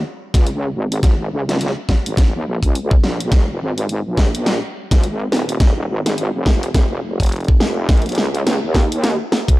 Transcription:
0.34 C#2, kick, snare, closed hi-hat
0.47 closed hi-hat
0.75 G#1
0.92 closed hi-hat
1.03 kick, snare, closed hi-hat
1.32 C#2
1.49 snare, closed hi-hat
1.57 snare
1.61 closed hi-hat
1.66 snare
1.89 kick, snare
2.06 G#1, closed hi-hat
2.17 kick, snare, closed hi-hat
2.35 D#2
2.47 A#1
2.62 C#2, kick, closed hi-hat
2.75 closed hi-hat
2.91 kick
3.04 A#1, snare
3.20 closed hi-hat
3.32 F1, kick, snare, closed hi-hat
3.61 G#1
3.78 closed hi-hat
3.89 closed hi-hat
4.06 A#1
4.17 kick, snare
4.35 closed hi-hat
4.46 snare, closed hi-hat
4.91 G#1, kick, snare, closed hi-hat
5.03 closed hi-hat
5.32 D#1, snare
5.49 closed hi-hat
5.60 kick, snare, closed hi-hat
5.90 G#1
6.06 snare, closed hi-hat
6.18 closed hi-hat
6.35 F1
6.46 kick, snare
6.63 closed hi-hat
6.74 F1, kick, snare, closed hi-hat
7.04 F1
7.20 kick, closed hi-hat
7.23 closed hi-hat
7.26 closed hi-hat
7.29 closed hi-hat
7.32 closed hi-hat
7.36 closed hi-hat
7.40 closed hi-hat
7.44 kick, closed hi-hat
7.60 snare
7.89 A#1, kick, snare, closed hi-hat
7.93 closed hi-hat
7.97 closed hi-hat
8.02 closed hi-hat
8.06 closed hi-hat
8.09 closed hi-hat
8.12 closed hi-hat
8.15 C#2, snare, closed hi-hat
8.35 closed hi-hat
8.47 snare, closed hi-hat
8.63 D#2
8.75 kick, snare
8.92 closed hi-hat
9.04 snare, closed hi-hat
9.32 snare
9.48 C#2, kick, closed hi-hat

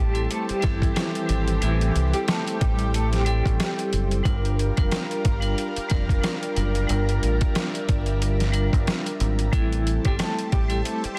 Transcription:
Already playing: G4 C5 E5 A5
0.00 A1 G3
0.13 G3 C4 E4 A4, closed hi-hat
0.30 E3 A3 C4 G4 A4, closed hi-hat
0.49 G3 G4, muted fingered electric bass stroke, closed hi-hat
0.60 G3 C4 E4 A4, kick, snare, closed hi-hat
0.64 G1 E3
0.82 kick, closed hi-hat
0.94 G3 C4 E4 A4, cross-stick, snare, closed hi-hat
1.15 closed hi-hat
1.26 G#1 G3 C4 E4 A4, closed hi-hat
1.48 closed hi-hat
1.62 A1 E3 G3 C4 E4 A4 G5, closed hi-hat
1.81 closed hi-hat
1.95 C2, closed hi-hat
2.13 G3 G4, closed hi-hat
2.28 A3 A4, cross-stick, snare, closed hi-hat
2.47 closed hi-hat
2.60 A1 G3 G4, kick, closed hi-hat
2.79 closed hi-hat
2.94 A3 A4, closed hi-hat
3.13 G3 G4, snare, closed hi-hat
3.25 G3 C4 E4 G4 A4, closed hi-hat
3.46 A1, kick, closed hi-hat
3.60 cross-stick, snare, closed hi-hat
3.79 closed hi-hat
3.93 F#1, closed hi-hat
4.11 closed hi-hat
4.23 G1 G3 D4 F4 G4 A#4 D5 F5 A#5, kick, closed hi-hat
4.45 closed hi-hat
4.59 closed hi-hat
4.77 F1 G3 D4 F4 A#4, kick, closed hi-hat
4.91 cross-stick, snare, closed hi-hat
5.11 closed hi-hat
5.25 G1, kick, closed hi-hat
5.40 G3 D4 F4 A#4, closed hi-hat
5.58 closed hi-hat
5.76 muted fingered electric bass stroke, closed hi-hat
5.88 F1 G3 D4 F4 A#4, kick, snare, closed hi-hat
6.09 kick, closed hi-hat
6.21 G3 D4 F4 A#4, cross-stick, snare, closed hi-hat
6.43 closed hi-hat
6.55 F#1 G3 D4 F4 A#4, closed hi-hat
6.75 closed hi-hat
6.87 G1 G3 D4 F4 A#4 E5, closed hi-hat
7.09 closed hi-hat
7.23 A1, closed hi-hat
7.41 kick, closed hi-hat
7.55 cross-stick, snare, closed hi-hat
7.75 closed hi-hat
7.89 G1, kick, closed hi-hat
8.06 closed hi-hat
8.22 closed hi-hat
8.40 snare, closed hi-hat
8.52 G3 D4 F4 A#4, closed hi-hat
8.73 G1, kick, closed hi-hat
8.87 cross-stick, snare, closed hi-hat
9.06 closed hi-hat
9.20 G#1, closed hi-hat
9.39 closed hi-hat
9.51 A1 E3 G3 C4 E4 G4 A4 C5 E5 A5, kick, closed hi-hat
9.72 closed hi-hat
9.87 closed hi-hat
10.05 G1 G3 C4 E4 G4 A4, kick, closed hi-hat
10.19 A3 A4, cross-stick, snare, closed hi-hat
10.39 closed hi-hat
10.52 A1 G3 G4, kick, closed hi-hat
10.68 G3 C4 E4 A4, closed hi-hat
10.85 E3 A3 C4 G4 A4, closed hi-hat
11.04 G3 G4, muted fingered electric bass stroke, closed hi-hat
11.15 G3 C4

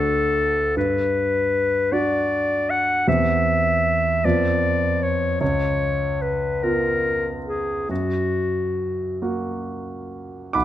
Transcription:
Already playing: D2 D4 F#4 A4
0.76 G2 B4
1.92 D4 F#4 D5
2.70 F#5
3.07 E2 C4 G4 E5
4.25 F2 B3 F4 D5
5.02 C#5
5.41 C#2 C#5
6.22 B4
6.62 B3 F4 A#4
7.46 G#4
7.89 F#2 F#4
9.22 A#3 F#4
10.53 B1 F#5 B5 D6

